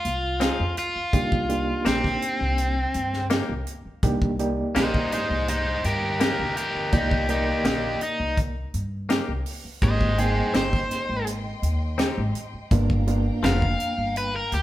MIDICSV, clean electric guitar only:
0, 0, Header, 1, 2, 480
1, 0, Start_track
1, 0, Key_signature, -3, "minor"
1, 0, Tempo, 723764
1, 753, Time_signature, 4, 2, 24, 8
1, 9699, End_track
2, 0, Start_track
2, 0, Title_t, "Clean electric guitar"
2, 0, Program_c, 0, 27
2, 266, Note_on_c, 0, 60, 76
2, 273, Note_on_c, 0, 63, 92
2, 276, Note_on_c, 0, 68, 94
2, 416, Note_off_c, 0, 60, 0
2, 420, Note_off_c, 0, 63, 0
2, 421, Note_off_c, 0, 68, 0
2, 1225, Note_on_c, 0, 58, 70
2, 1231, Note_on_c, 0, 63, 74
2, 1235, Note_on_c, 0, 67, 79
2, 1377, Note_off_c, 0, 58, 0
2, 1379, Note_off_c, 0, 63, 0
2, 1381, Note_off_c, 0, 67, 0
2, 2189, Note_on_c, 0, 58, 90
2, 2193, Note_on_c, 0, 63, 95
2, 2196, Note_on_c, 0, 67, 102
2, 2338, Note_off_c, 0, 58, 0
2, 2340, Note_off_c, 0, 63, 0
2, 2342, Note_off_c, 0, 67, 0
2, 3149, Note_on_c, 0, 58, 76
2, 3153, Note_on_c, 0, 63, 78
2, 3159, Note_on_c, 0, 67, 79
2, 3298, Note_off_c, 0, 58, 0
2, 3301, Note_off_c, 0, 63, 0
2, 3304, Note_off_c, 0, 67, 0
2, 4113, Note_on_c, 0, 58, 78
2, 4117, Note_on_c, 0, 63, 88
2, 4122, Note_on_c, 0, 67, 84
2, 4261, Note_off_c, 0, 58, 0
2, 4263, Note_off_c, 0, 63, 0
2, 4265, Note_off_c, 0, 67, 0
2, 5071, Note_on_c, 0, 58, 77
2, 5076, Note_on_c, 0, 63, 81
2, 5080, Note_on_c, 0, 67, 84
2, 5219, Note_off_c, 0, 58, 0
2, 5222, Note_off_c, 0, 63, 0
2, 5224, Note_off_c, 0, 67, 0
2, 6030, Note_on_c, 0, 58, 87
2, 6035, Note_on_c, 0, 63, 96
2, 6040, Note_on_c, 0, 67, 100
2, 6178, Note_off_c, 0, 58, 0
2, 6181, Note_off_c, 0, 63, 0
2, 6183, Note_off_c, 0, 67, 0
2, 6989, Note_on_c, 0, 60, 76
2, 6994, Note_on_c, 0, 63, 78
2, 6999, Note_on_c, 0, 67, 81
2, 7137, Note_off_c, 0, 60, 0
2, 7140, Note_off_c, 0, 63, 0
2, 7142, Note_off_c, 0, 67, 0
2, 7945, Note_on_c, 0, 60, 91
2, 7949, Note_on_c, 0, 63, 99
2, 7954, Note_on_c, 0, 67, 98
2, 8095, Note_off_c, 0, 60, 0
2, 8097, Note_off_c, 0, 63, 0
2, 8100, Note_off_c, 0, 67, 0
2, 8905, Note_on_c, 0, 53, 80
2, 8910, Note_on_c, 0, 59, 82
2, 8912, Note_on_c, 0, 62, 78
2, 8916, Note_on_c, 0, 70, 87
2, 9055, Note_off_c, 0, 53, 0
2, 9057, Note_off_c, 0, 59, 0
2, 9059, Note_off_c, 0, 62, 0
2, 9060, Note_off_c, 0, 70, 0
2, 9699, End_track
0, 0, End_of_file